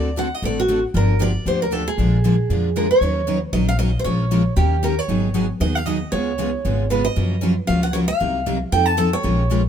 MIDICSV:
0, 0, Header, 1, 5, 480
1, 0, Start_track
1, 0, Tempo, 259516
1, 1739, Time_signature, 4, 2, 24, 8
1, 17921, End_track
2, 0, Start_track
2, 0, Title_t, "Steel-string acoustic guitar"
2, 0, Program_c, 0, 25
2, 0, Note_on_c, 0, 74, 81
2, 325, Note_off_c, 0, 74, 0
2, 343, Note_on_c, 0, 78, 95
2, 637, Note_off_c, 0, 78, 0
2, 637, Note_on_c, 0, 75, 84
2, 812, Note_off_c, 0, 75, 0
2, 839, Note_on_c, 0, 74, 91
2, 1089, Note_off_c, 0, 74, 0
2, 1102, Note_on_c, 0, 66, 81
2, 1525, Note_off_c, 0, 66, 0
2, 1786, Note_on_c, 0, 70, 92
2, 2252, Note_on_c, 0, 74, 90
2, 2257, Note_off_c, 0, 70, 0
2, 2684, Note_off_c, 0, 74, 0
2, 2731, Note_on_c, 0, 72, 87
2, 2991, Note_off_c, 0, 72, 0
2, 2999, Note_on_c, 0, 70, 86
2, 3194, Note_off_c, 0, 70, 0
2, 3194, Note_on_c, 0, 69, 76
2, 3468, Note_off_c, 0, 69, 0
2, 3470, Note_on_c, 0, 68, 82
2, 5119, Note_on_c, 0, 70, 65
2, 5309, Note_off_c, 0, 68, 0
2, 5364, Note_off_c, 0, 70, 0
2, 5377, Note_on_c, 0, 73, 88
2, 6269, Note_off_c, 0, 73, 0
2, 6528, Note_on_c, 0, 75, 84
2, 6810, Note_off_c, 0, 75, 0
2, 6817, Note_on_c, 0, 77, 88
2, 6997, Note_off_c, 0, 77, 0
2, 7005, Note_on_c, 0, 75, 82
2, 7355, Note_off_c, 0, 75, 0
2, 7387, Note_on_c, 0, 72, 74
2, 7473, Note_off_c, 0, 72, 0
2, 7481, Note_on_c, 0, 73, 87
2, 8383, Note_off_c, 0, 73, 0
2, 8445, Note_on_c, 0, 67, 72
2, 8948, Note_off_c, 0, 67, 0
2, 8951, Note_on_c, 0, 70, 77
2, 9223, Note_off_c, 0, 70, 0
2, 9223, Note_on_c, 0, 73, 95
2, 10179, Note_off_c, 0, 73, 0
2, 10373, Note_on_c, 0, 75, 94
2, 10640, Note_off_c, 0, 75, 0
2, 10640, Note_on_c, 0, 77, 99
2, 10832, Note_off_c, 0, 77, 0
2, 10832, Note_on_c, 0, 75, 79
2, 11315, Note_on_c, 0, 73, 85
2, 11342, Note_off_c, 0, 75, 0
2, 12760, Note_off_c, 0, 73, 0
2, 12767, Note_on_c, 0, 71, 73
2, 13031, Note_on_c, 0, 75, 104
2, 13056, Note_off_c, 0, 71, 0
2, 13935, Note_off_c, 0, 75, 0
2, 14191, Note_on_c, 0, 77, 91
2, 14475, Note_off_c, 0, 77, 0
2, 14483, Note_on_c, 0, 78, 91
2, 14669, Note_on_c, 0, 73, 87
2, 14702, Note_off_c, 0, 78, 0
2, 14761, Note_off_c, 0, 73, 0
2, 14941, Note_on_c, 0, 77, 112
2, 15849, Note_off_c, 0, 77, 0
2, 16133, Note_on_c, 0, 79, 103
2, 16380, Note_off_c, 0, 79, 0
2, 16380, Note_on_c, 0, 81, 96
2, 16604, Note_off_c, 0, 81, 0
2, 16605, Note_on_c, 0, 69, 91
2, 16893, Note_off_c, 0, 69, 0
2, 16893, Note_on_c, 0, 73, 109
2, 17785, Note_off_c, 0, 73, 0
2, 17921, End_track
3, 0, Start_track
3, 0, Title_t, "Steel-string acoustic guitar"
3, 0, Program_c, 1, 25
3, 3667, Note_on_c, 1, 50, 73
3, 3673, Note_on_c, 1, 58, 75
3, 3680, Note_on_c, 1, 68, 70
3, 4001, Note_off_c, 1, 50, 0
3, 4004, Note_off_c, 1, 58, 0
3, 4008, Note_off_c, 1, 68, 0
3, 4148, Note_on_c, 1, 50, 78
3, 4166, Note_on_c, 1, 58, 93
3, 4167, Note_on_c, 1, 68, 97
3, 4333, Note_off_c, 1, 50, 0
3, 4343, Note_off_c, 1, 58, 0
3, 4343, Note_off_c, 1, 68, 0
3, 4625, Note_on_c, 1, 50, 66
3, 4631, Note_on_c, 1, 58, 66
3, 4645, Note_on_c, 1, 68, 74
3, 4960, Note_off_c, 1, 50, 0
3, 4963, Note_off_c, 1, 58, 0
3, 4970, Note_off_c, 1, 68, 0
3, 5102, Note_on_c, 1, 50, 80
3, 5109, Note_on_c, 1, 58, 92
3, 5122, Note_on_c, 1, 68, 88
3, 5291, Note_off_c, 1, 50, 0
3, 5294, Note_off_c, 1, 58, 0
3, 5301, Note_off_c, 1, 68, 0
3, 13243, Note_on_c, 1, 54, 65
3, 13252, Note_on_c, 1, 65, 69
3, 13254, Note_on_c, 1, 70, 73
3, 13589, Note_off_c, 1, 54, 0
3, 13593, Note_off_c, 1, 65, 0
3, 13595, Note_off_c, 1, 70, 0
3, 13737, Note_on_c, 1, 54, 88
3, 13748, Note_on_c, 1, 70, 90
3, 13750, Note_on_c, 1, 65, 96
3, 13928, Note_off_c, 1, 54, 0
3, 13934, Note_off_c, 1, 70, 0
3, 13935, Note_off_c, 1, 65, 0
3, 14225, Note_on_c, 1, 54, 66
3, 14233, Note_on_c, 1, 65, 73
3, 14241, Note_on_c, 1, 70, 82
3, 14560, Note_off_c, 1, 54, 0
3, 14564, Note_off_c, 1, 65, 0
3, 14568, Note_off_c, 1, 70, 0
3, 14687, Note_on_c, 1, 54, 90
3, 14708, Note_on_c, 1, 65, 91
3, 14709, Note_on_c, 1, 70, 84
3, 14883, Note_off_c, 1, 54, 0
3, 14894, Note_off_c, 1, 65, 0
3, 14894, Note_off_c, 1, 70, 0
3, 17921, End_track
4, 0, Start_track
4, 0, Title_t, "Steel-string acoustic guitar"
4, 0, Program_c, 2, 25
4, 301, Note_on_c, 2, 50, 72
4, 314, Note_on_c, 2, 57, 66
4, 318, Note_on_c, 2, 60, 73
4, 321, Note_on_c, 2, 66, 72
4, 323, Note_on_c, 2, 69, 81
4, 488, Note_off_c, 2, 50, 0
4, 495, Note_off_c, 2, 57, 0
4, 497, Note_off_c, 2, 60, 0
4, 499, Note_off_c, 2, 66, 0
4, 499, Note_off_c, 2, 69, 0
4, 784, Note_on_c, 2, 50, 59
4, 789, Note_on_c, 2, 60, 60
4, 792, Note_on_c, 2, 57, 66
4, 808, Note_on_c, 2, 69, 77
4, 809, Note_on_c, 2, 66, 61
4, 1118, Note_off_c, 2, 50, 0
4, 1120, Note_off_c, 2, 60, 0
4, 1122, Note_off_c, 2, 57, 0
4, 1130, Note_off_c, 2, 69, 0
4, 1131, Note_off_c, 2, 66, 0
4, 1265, Note_on_c, 2, 50, 84
4, 1265, Note_on_c, 2, 57, 75
4, 1276, Note_on_c, 2, 60, 65
4, 1281, Note_on_c, 2, 66, 87
4, 1282, Note_on_c, 2, 69, 82
4, 1451, Note_off_c, 2, 50, 0
4, 1451, Note_off_c, 2, 57, 0
4, 1457, Note_off_c, 2, 60, 0
4, 1459, Note_off_c, 2, 66, 0
4, 1460, Note_off_c, 2, 69, 0
4, 1739, Note_on_c, 2, 50, 52
4, 1751, Note_on_c, 2, 53, 65
4, 1751, Note_on_c, 2, 58, 67
4, 1754, Note_on_c, 2, 62, 70
4, 1765, Note_on_c, 2, 67, 61
4, 2076, Note_off_c, 2, 50, 0
4, 2082, Note_off_c, 2, 53, 0
4, 2082, Note_off_c, 2, 58, 0
4, 2084, Note_off_c, 2, 62, 0
4, 2089, Note_off_c, 2, 67, 0
4, 2219, Note_on_c, 2, 53, 82
4, 2221, Note_on_c, 2, 58, 79
4, 2222, Note_on_c, 2, 50, 77
4, 2233, Note_on_c, 2, 67, 86
4, 2236, Note_on_c, 2, 62, 81
4, 2408, Note_off_c, 2, 53, 0
4, 2410, Note_off_c, 2, 50, 0
4, 2410, Note_off_c, 2, 58, 0
4, 2415, Note_off_c, 2, 67, 0
4, 2417, Note_off_c, 2, 62, 0
4, 2703, Note_on_c, 2, 50, 63
4, 2706, Note_on_c, 2, 53, 67
4, 2709, Note_on_c, 2, 58, 65
4, 2716, Note_on_c, 2, 67, 73
4, 2719, Note_on_c, 2, 62, 68
4, 3038, Note_off_c, 2, 50, 0
4, 3040, Note_off_c, 2, 53, 0
4, 3041, Note_off_c, 2, 58, 0
4, 3045, Note_off_c, 2, 67, 0
4, 3046, Note_off_c, 2, 62, 0
4, 3161, Note_on_c, 2, 50, 73
4, 3174, Note_on_c, 2, 53, 76
4, 3184, Note_on_c, 2, 58, 83
4, 3185, Note_on_c, 2, 67, 71
4, 3187, Note_on_c, 2, 62, 90
4, 3360, Note_off_c, 2, 50, 0
4, 3366, Note_off_c, 2, 53, 0
4, 3371, Note_off_c, 2, 58, 0
4, 3372, Note_off_c, 2, 67, 0
4, 3373, Note_off_c, 2, 62, 0
4, 3678, Note_on_c, 2, 53, 64
4, 3682, Note_on_c, 2, 56, 57
4, 3686, Note_on_c, 2, 62, 58
4, 3688, Note_on_c, 2, 65, 66
4, 3693, Note_on_c, 2, 70, 65
4, 4006, Note_off_c, 2, 53, 0
4, 4008, Note_off_c, 2, 56, 0
4, 4010, Note_off_c, 2, 62, 0
4, 4011, Note_off_c, 2, 65, 0
4, 4014, Note_off_c, 2, 70, 0
4, 4142, Note_on_c, 2, 53, 75
4, 4153, Note_on_c, 2, 65, 85
4, 4158, Note_on_c, 2, 56, 71
4, 4160, Note_on_c, 2, 62, 77
4, 4168, Note_on_c, 2, 70, 75
4, 4330, Note_off_c, 2, 53, 0
4, 4336, Note_off_c, 2, 65, 0
4, 4339, Note_off_c, 2, 56, 0
4, 4339, Note_off_c, 2, 62, 0
4, 4344, Note_off_c, 2, 70, 0
4, 4626, Note_on_c, 2, 53, 64
4, 4629, Note_on_c, 2, 56, 74
4, 4635, Note_on_c, 2, 62, 70
4, 4637, Note_on_c, 2, 65, 60
4, 4647, Note_on_c, 2, 70, 63
4, 4960, Note_off_c, 2, 53, 0
4, 4962, Note_off_c, 2, 56, 0
4, 4965, Note_off_c, 2, 62, 0
4, 4966, Note_off_c, 2, 65, 0
4, 4971, Note_off_c, 2, 70, 0
4, 5100, Note_on_c, 2, 53, 70
4, 5105, Note_on_c, 2, 56, 69
4, 5108, Note_on_c, 2, 62, 74
4, 5112, Note_on_c, 2, 70, 75
4, 5121, Note_on_c, 2, 65, 71
4, 5290, Note_off_c, 2, 53, 0
4, 5292, Note_off_c, 2, 56, 0
4, 5294, Note_off_c, 2, 62, 0
4, 5296, Note_off_c, 2, 70, 0
4, 5300, Note_off_c, 2, 65, 0
4, 5584, Note_on_c, 2, 51, 62
4, 5594, Note_on_c, 2, 54, 62
4, 5599, Note_on_c, 2, 61, 72
4, 5604, Note_on_c, 2, 70, 63
4, 5610, Note_on_c, 2, 63, 70
4, 5920, Note_off_c, 2, 51, 0
4, 5924, Note_off_c, 2, 54, 0
4, 5927, Note_off_c, 2, 61, 0
4, 5929, Note_off_c, 2, 70, 0
4, 5932, Note_off_c, 2, 63, 0
4, 6047, Note_on_c, 2, 51, 83
4, 6047, Note_on_c, 2, 54, 67
4, 6064, Note_on_c, 2, 61, 69
4, 6065, Note_on_c, 2, 70, 86
4, 6066, Note_on_c, 2, 63, 78
4, 6243, Note_off_c, 2, 51, 0
4, 6243, Note_off_c, 2, 54, 0
4, 6252, Note_off_c, 2, 61, 0
4, 6252, Note_off_c, 2, 70, 0
4, 6253, Note_off_c, 2, 63, 0
4, 6526, Note_on_c, 2, 51, 68
4, 6539, Note_on_c, 2, 61, 65
4, 6542, Note_on_c, 2, 54, 64
4, 6544, Note_on_c, 2, 63, 70
4, 6544, Note_on_c, 2, 70, 65
4, 6871, Note_off_c, 2, 51, 0
4, 6877, Note_off_c, 2, 61, 0
4, 6878, Note_off_c, 2, 54, 0
4, 6879, Note_off_c, 2, 63, 0
4, 6880, Note_off_c, 2, 70, 0
4, 7016, Note_on_c, 2, 51, 73
4, 7020, Note_on_c, 2, 61, 77
4, 7026, Note_on_c, 2, 54, 74
4, 7027, Note_on_c, 2, 70, 85
4, 7030, Note_on_c, 2, 63, 95
4, 7208, Note_off_c, 2, 51, 0
4, 7210, Note_off_c, 2, 61, 0
4, 7213, Note_off_c, 2, 54, 0
4, 7213, Note_off_c, 2, 70, 0
4, 7215, Note_off_c, 2, 63, 0
4, 7495, Note_on_c, 2, 53, 64
4, 7502, Note_on_c, 2, 56, 62
4, 7505, Note_on_c, 2, 61, 64
4, 7508, Note_on_c, 2, 65, 61
4, 7515, Note_on_c, 2, 70, 63
4, 7835, Note_off_c, 2, 53, 0
4, 7838, Note_off_c, 2, 56, 0
4, 7840, Note_off_c, 2, 61, 0
4, 7842, Note_off_c, 2, 65, 0
4, 7845, Note_off_c, 2, 70, 0
4, 7971, Note_on_c, 2, 53, 81
4, 7974, Note_on_c, 2, 61, 86
4, 7981, Note_on_c, 2, 56, 85
4, 7982, Note_on_c, 2, 65, 78
4, 7983, Note_on_c, 2, 70, 94
4, 8165, Note_off_c, 2, 53, 0
4, 8167, Note_off_c, 2, 61, 0
4, 8170, Note_off_c, 2, 56, 0
4, 8171, Note_off_c, 2, 65, 0
4, 8171, Note_off_c, 2, 70, 0
4, 8450, Note_on_c, 2, 51, 59
4, 8457, Note_on_c, 2, 61, 74
4, 8459, Note_on_c, 2, 58, 64
4, 8459, Note_on_c, 2, 67, 68
4, 8462, Note_on_c, 2, 70, 72
4, 8792, Note_off_c, 2, 51, 0
4, 8796, Note_off_c, 2, 61, 0
4, 8797, Note_off_c, 2, 58, 0
4, 8797, Note_off_c, 2, 67, 0
4, 8798, Note_off_c, 2, 70, 0
4, 8932, Note_on_c, 2, 51, 81
4, 8932, Note_on_c, 2, 58, 94
4, 8943, Note_on_c, 2, 61, 86
4, 8949, Note_on_c, 2, 67, 88
4, 8949, Note_on_c, 2, 70, 81
4, 9126, Note_off_c, 2, 51, 0
4, 9126, Note_off_c, 2, 58, 0
4, 9131, Note_off_c, 2, 61, 0
4, 9134, Note_off_c, 2, 67, 0
4, 9134, Note_off_c, 2, 70, 0
4, 9415, Note_on_c, 2, 51, 62
4, 9415, Note_on_c, 2, 54, 57
4, 9417, Note_on_c, 2, 59, 72
4, 9424, Note_on_c, 2, 63, 69
4, 9427, Note_on_c, 2, 68, 75
4, 9755, Note_off_c, 2, 51, 0
4, 9755, Note_off_c, 2, 54, 0
4, 9756, Note_off_c, 2, 59, 0
4, 9760, Note_off_c, 2, 63, 0
4, 9761, Note_off_c, 2, 68, 0
4, 9875, Note_on_c, 2, 51, 73
4, 9878, Note_on_c, 2, 54, 78
4, 9880, Note_on_c, 2, 59, 84
4, 9888, Note_on_c, 2, 63, 90
4, 9897, Note_on_c, 2, 68, 81
4, 10077, Note_off_c, 2, 51, 0
4, 10079, Note_off_c, 2, 54, 0
4, 10080, Note_off_c, 2, 59, 0
4, 10084, Note_off_c, 2, 63, 0
4, 10089, Note_off_c, 2, 68, 0
4, 10362, Note_on_c, 2, 51, 62
4, 10375, Note_on_c, 2, 59, 71
4, 10380, Note_on_c, 2, 54, 66
4, 10381, Note_on_c, 2, 63, 76
4, 10387, Note_on_c, 2, 68, 73
4, 10709, Note_off_c, 2, 51, 0
4, 10715, Note_off_c, 2, 59, 0
4, 10718, Note_off_c, 2, 54, 0
4, 10718, Note_off_c, 2, 63, 0
4, 10721, Note_off_c, 2, 68, 0
4, 10844, Note_on_c, 2, 51, 82
4, 10847, Note_on_c, 2, 54, 79
4, 10853, Note_on_c, 2, 59, 82
4, 10862, Note_on_c, 2, 63, 91
4, 10867, Note_on_c, 2, 68, 86
4, 11042, Note_off_c, 2, 51, 0
4, 11044, Note_off_c, 2, 54, 0
4, 11047, Note_off_c, 2, 59, 0
4, 11051, Note_off_c, 2, 63, 0
4, 11054, Note_off_c, 2, 68, 0
4, 11321, Note_on_c, 2, 49, 60
4, 11322, Note_on_c, 2, 56, 66
4, 11330, Note_on_c, 2, 59, 67
4, 11336, Note_on_c, 2, 65, 74
4, 11343, Note_on_c, 2, 68, 73
4, 11668, Note_off_c, 2, 49, 0
4, 11669, Note_off_c, 2, 56, 0
4, 11673, Note_off_c, 2, 59, 0
4, 11676, Note_off_c, 2, 65, 0
4, 11679, Note_off_c, 2, 68, 0
4, 11812, Note_on_c, 2, 56, 75
4, 11814, Note_on_c, 2, 49, 77
4, 11822, Note_on_c, 2, 59, 90
4, 11826, Note_on_c, 2, 65, 84
4, 11829, Note_on_c, 2, 68, 98
4, 12006, Note_off_c, 2, 56, 0
4, 12007, Note_off_c, 2, 49, 0
4, 12011, Note_off_c, 2, 59, 0
4, 12013, Note_off_c, 2, 65, 0
4, 12015, Note_off_c, 2, 68, 0
4, 12302, Note_on_c, 2, 49, 64
4, 12305, Note_on_c, 2, 56, 58
4, 12305, Note_on_c, 2, 59, 73
4, 12305, Note_on_c, 2, 65, 58
4, 12321, Note_on_c, 2, 68, 71
4, 12639, Note_off_c, 2, 49, 0
4, 12640, Note_off_c, 2, 56, 0
4, 12640, Note_off_c, 2, 59, 0
4, 12640, Note_off_c, 2, 65, 0
4, 12648, Note_off_c, 2, 68, 0
4, 12764, Note_on_c, 2, 49, 76
4, 12776, Note_on_c, 2, 56, 85
4, 12780, Note_on_c, 2, 59, 85
4, 12783, Note_on_c, 2, 68, 96
4, 12788, Note_on_c, 2, 65, 87
4, 12962, Note_off_c, 2, 49, 0
4, 12968, Note_off_c, 2, 56, 0
4, 12970, Note_off_c, 2, 59, 0
4, 12971, Note_off_c, 2, 68, 0
4, 12974, Note_off_c, 2, 65, 0
4, 13243, Note_on_c, 2, 49, 63
4, 13244, Note_on_c, 2, 58, 66
4, 13246, Note_on_c, 2, 53, 67
4, 13248, Note_on_c, 2, 61, 73
4, 13257, Note_on_c, 2, 66, 71
4, 13589, Note_off_c, 2, 49, 0
4, 13590, Note_off_c, 2, 58, 0
4, 13591, Note_off_c, 2, 53, 0
4, 13592, Note_off_c, 2, 61, 0
4, 13596, Note_off_c, 2, 66, 0
4, 13706, Note_on_c, 2, 49, 85
4, 13710, Note_on_c, 2, 53, 78
4, 13715, Note_on_c, 2, 61, 88
4, 13718, Note_on_c, 2, 58, 74
4, 13725, Note_on_c, 2, 66, 95
4, 13913, Note_off_c, 2, 49, 0
4, 13915, Note_off_c, 2, 53, 0
4, 13917, Note_off_c, 2, 61, 0
4, 13919, Note_off_c, 2, 58, 0
4, 13922, Note_off_c, 2, 66, 0
4, 14198, Note_on_c, 2, 49, 59
4, 14205, Note_on_c, 2, 53, 73
4, 14210, Note_on_c, 2, 61, 67
4, 14212, Note_on_c, 2, 58, 70
4, 14215, Note_on_c, 2, 66, 64
4, 14547, Note_off_c, 2, 49, 0
4, 14550, Note_off_c, 2, 53, 0
4, 14552, Note_off_c, 2, 61, 0
4, 14553, Note_off_c, 2, 58, 0
4, 14555, Note_off_c, 2, 66, 0
4, 14679, Note_on_c, 2, 49, 85
4, 14687, Note_on_c, 2, 53, 91
4, 14695, Note_on_c, 2, 58, 72
4, 14698, Note_on_c, 2, 61, 74
4, 14701, Note_on_c, 2, 66, 89
4, 14879, Note_off_c, 2, 49, 0
4, 14883, Note_off_c, 2, 53, 0
4, 14887, Note_off_c, 2, 58, 0
4, 14889, Note_off_c, 2, 61, 0
4, 14890, Note_off_c, 2, 66, 0
4, 15168, Note_on_c, 2, 48, 62
4, 15183, Note_on_c, 2, 58, 61
4, 15184, Note_on_c, 2, 54, 58
4, 15186, Note_on_c, 2, 63, 68
4, 15188, Note_on_c, 2, 70, 69
4, 15511, Note_off_c, 2, 48, 0
4, 15518, Note_off_c, 2, 58, 0
4, 15519, Note_off_c, 2, 54, 0
4, 15520, Note_off_c, 2, 63, 0
4, 15521, Note_off_c, 2, 70, 0
4, 15653, Note_on_c, 2, 48, 74
4, 15655, Note_on_c, 2, 58, 82
4, 15656, Note_on_c, 2, 63, 92
4, 15658, Note_on_c, 2, 54, 77
4, 15665, Note_on_c, 2, 70, 80
4, 15845, Note_off_c, 2, 48, 0
4, 15847, Note_off_c, 2, 58, 0
4, 15847, Note_off_c, 2, 63, 0
4, 15848, Note_off_c, 2, 54, 0
4, 15852, Note_off_c, 2, 70, 0
4, 16149, Note_on_c, 2, 53, 68
4, 16160, Note_on_c, 2, 60, 69
4, 16167, Note_on_c, 2, 63, 74
4, 16169, Note_on_c, 2, 69, 72
4, 16481, Note_off_c, 2, 53, 0
4, 16487, Note_off_c, 2, 60, 0
4, 16490, Note_off_c, 2, 63, 0
4, 16491, Note_off_c, 2, 69, 0
4, 16591, Note_on_c, 2, 53, 83
4, 16596, Note_on_c, 2, 60, 90
4, 16616, Note_on_c, 2, 63, 76
4, 16618, Note_on_c, 2, 69, 102
4, 16794, Note_off_c, 2, 53, 0
4, 16797, Note_off_c, 2, 60, 0
4, 16807, Note_off_c, 2, 63, 0
4, 16808, Note_off_c, 2, 69, 0
4, 17076, Note_on_c, 2, 53, 68
4, 17084, Note_on_c, 2, 56, 65
4, 17092, Note_on_c, 2, 61, 66
4, 17092, Note_on_c, 2, 65, 68
4, 17094, Note_on_c, 2, 70, 65
4, 17424, Note_off_c, 2, 53, 0
4, 17428, Note_off_c, 2, 56, 0
4, 17432, Note_off_c, 2, 61, 0
4, 17432, Note_off_c, 2, 65, 0
4, 17433, Note_off_c, 2, 70, 0
4, 17567, Note_on_c, 2, 53, 76
4, 17577, Note_on_c, 2, 56, 84
4, 17589, Note_on_c, 2, 65, 81
4, 17590, Note_on_c, 2, 61, 78
4, 17596, Note_on_c, 2, 70, 78
4, 17762, Note_off_c, 2, 53, 0
4, 17767, Note_off_c, 2, 56, 0
4, 17773, Note_off_c, 2, 65, 0
4, 17774, Note_off_c, 2, 61, 0
4, 17776, Note_off_c, 2, 70, 0
4, 17921, End_track
5, 0, Start_track
5, 0, Title_t, "Upright bass"
5, 0, Program_c, 3, 32
5, 0, Note_on_c, 3, 38, 84
5, 590, Note_off_c, 3, 38, 0
5, 783, Note_on_c, 3, 33, 73
5, 1550, Note_off_c, 3, 33, 0
5, 1742, Note_on_c, 3, 31, 92
5, 2510, Note_off_c, 3, 31, 0
5, 2695, Note_on_c, 3, 38, 82
5, 3466, Note_off_c, 3, 38, 0
5, 3658, Note_on_c, 3, 34, 86
5, 4427, Note_off_c, 3, 34, 0
5, 4616, Note_on_c, 3, 41, 75
5, 5386, Note_off_c, 3, 41, 0
5, 5568, Note_on_c, 3, 39, 75
5, 6341, Note_off_c, 3, 39, 0
5, 6524, Note_on_c, 3, 34, 80
5, 7299, Note_off_c, 3, 34, 0
5, 7492, Note_on_c, 3, 34, 78
5, 8264, Note_off_c, 3, 34, 0
5, 8445, Note_on_c, 3, 39, 93
5, 9220, Note_off_c, 3, 39, 0
5, 9401, Note_on_c, 3, 32, 84
5, 10177, Note_off_c, 3, 32, 0
5, 10362, Note_on_c, 3, 39, 78
5, 11138, Note_off_c, 3, 39, 0
5, 11331, Note_on_c, 3, 37, 83
5, 12103, Note_off_c, 3, 37, 0
5, 12298, Note_on_c, 3, 32, 80
5, 13067, Note_off_c, 3, 32, 0
5, 13255, Note_on_c, 3, 42, 95
5, 14025, Note_off_c, 3, 42, 0
5, 14219, Note_on_c, 3, 37, 84
5, 14988, Note_off_c, 3, 37, 0
5, 15184, Note_on_c, 3, 36, 87
5, 15951, Note_off_c, 3, 36, 0
5, 16131, Note_on_c, 3, 41, 81
5, 16902, Note_off_c, 3, 41, 0
5, 17096, Note_on_c, 3, 34, 83
5, 17865, Note_off_c, 3, 34, 0
5, 17921, End_track
0, 0, End_of_file